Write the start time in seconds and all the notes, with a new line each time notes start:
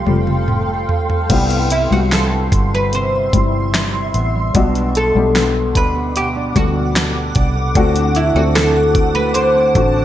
Already playing: C3 F3 G3 A3 C4 F4 G4 A4 F5 G5 C6
0.06 F1 G3 A3 C4 F4 G4, mid tom
0.27 C4, mid tom
0.48 G4, mid tom
0.69 C4
0.89 A3, floor tom
1.10 C4, floor tom
1.29 C2 G2 C3 G3 B3 C4 E4 E5 C6, kick, closed hi-hat, crash
1.50 B3, closed hi-hat
1.70 G3 E4, closed hi-hat
1.91 C2 G3 B3 C4 F#4
2.12 G3 A4, snare, closed hi-hat
2.32 E4
2.52 G1 B3, kick, closed hi-hat
2.73 G3 B4
2.93 C3 C5, closed hi-hat
3.33 G1 G3 C4 E4, kick, closed hi-hat
3.74 G3, snare, closed hi-hat
3.94 E4
4.14 A1 B3, closed hi-hat
4.35 G3
4.54 B1 B2 G3 B3 D4 F#4 F#5 D6, kick, closed hi-hat
4.75 D4, closed hi-hat
4.95 B3 A4, closed hi-hat
5.15 B1 G3 B3 D4 G4
5.35 B3, snare, closed hi-hat
5.75 D2 D4 B4, kick, closed hi-hat
5.96 B3
6.16 B2 G4, closed hi-hat
6.36 D4
6.55 D2 G3 B3 D4 F#4 A4, kick, closed hi-hat
6.76 D4
6.95 B3, snare, closed hi-hat
7.16 F#4
7.35 C2 D4, kick, closed hi-hat
7.56 B3
7.75 D2 A2 D3 A3 C4 D4 F#4 C5 A5, kick, closed hi-hat
7.95 C4, closed hi-hat
8.15 A3 E4, closed hi-hat
8.35 D2 A3 C4 D4 F#4
8.55 A3 A4, snare, closed hi-hat
8.76 F#4
8.95 C4, kick, closed hi-hat
9.15 A3 B4
9.34 D3 C5, closed hi-hat
9.55 C4
9.74 A1 A3 C4 D4 F#4, kick, closed hi-hat
9.96 C4